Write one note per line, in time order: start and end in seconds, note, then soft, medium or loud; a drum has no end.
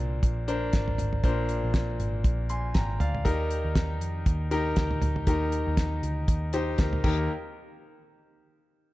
0.00 0.21 C2 medium
0.00 1.24 A#2 medium
0.00 0.48 D4 medium
0.00 0.48 A#4 medium
0.00 0.48 C5 medium
0.23 0.70 A#1 loud
0.23 kick loud
0.23 closed hi-hat medium
0.48 1.05 D4 medium
0.48 1.05 A#4 medium
0.48 1.05 C5 medium
0.48 closed hi-hat medium
0.73 0.97 G#1 medium
0.73 kick loud
0.73 snare medium
0.73 closed hi-hat medium
0.88 floor tom medium
0.98 1.22 G#1 medium
0.98 closed hi-hat medium
0.98 floor tom medium
1.13 floor tom medium
1.24 1.60 A#1 medium
1.24 1.95 A#2 medium
1.24 1.99 D4 medium
1.24 1.99 A#4 medium
1.24 1.99 C5 medium
1.24 kick loud
1.24 closed hi-hat medium
1.49 closed hi-hat medium
1.63 1.97 A#1 medium
1.74 kick loud
1.74 snare loud
1.74 closed hi-hat medium
2.00 2.23 G#1 medium
2.00 closed hi-hat medium
2.24 2.71 A#1 loud
2.24 kick loud
2.24 closed hi-hat medium
2.49 2.74 G#5 soft
2.49 2.74 C6 medium
2.49 closed hi-hat medium
2.74 2.98 G#1 medium
2.74 2.99 G5 medium
2.74 2.99 A#5 medium
2.74 kick loud
2.74 snare loud
2.74 closed hi-hat medium
3.00 3.24 D2 medium
3.00 3.48 D5 medium
3.00 3.48 F5 medium
3.00 closed hi-hat medium
3.00 floor tom medium
3.14 floor tom medium
3.25 3.62 D#2 loud
3.25 3.97 D#3 medium
3.25 4.00 D#4 medium
3.25 4.00 G4 medium
3.25 4.00 A#4 loud
3.25 kick medium
3.25 closed hi-hat medium
3.51 closed hi-hat medium
3.65 4.01 D#2 loud
3.75 kick loud
3.75 snare loud
3.75 closed hi-hat medium
4.01 4.24 F2 medium
4.01 closed hi-hat medium
4.26 4.73 D#2 loud
4.26 kick loud
4.26 closed hi-hat medium
4.51 5.08 D#4 medium
4.51 5.09 G4 medium
4.51 5.09 A#4 loud
4.51 closed hi-hat medium
4.76 5.00 D2 medium
4.76 kick loud
4.76 snare loud
4.76 closed hi-hat medium
4.91 floor tom medium
5.02 5.25 D2 medium
5.02 closed hi-hat medium
5.02 floor tom medium
5.16 floor tom medium
5.27 5.64 D#2 loud
5.27 5.99 D#3 medium
5.27 6.02 D#4 medium
5.27 6.02 G4 medium
5.27 6.02 A#4 medium
5.27 kick loud
5.27 closed hi-hat medium
5.52 closed hi-hat medium
5.67 6.00 D#2 loud
5.77 kick loud
5.77 snare loud
5.77 closed hi-hat medium
6.03 6.26 D2 medium
6.03 closed hi-hat medium
6.28 6.75 D#2 medium
6.28 kick loud
6.28 closed hi-hat medium
6.53 7.02 D#4 medium
6.53 6.78 G4 medium
6.53 6.79 C5 medium
6.53 closed hi-hat medium
6.78 7.02 D2 medium
6.78 7.02 G4 medium
6.78 7.02 A#4 medium
6.78 kick loud
6.78 snare loud
6.78 closed hi-hat medium
6.93 floor tom medium
7.04 7.27 D#2 medium
7.04 7.27 D#4 medium
7.04 7.27 G4 medium
7.04 7.27 A#4 loud
7.04 kick loud
7.04 crash medium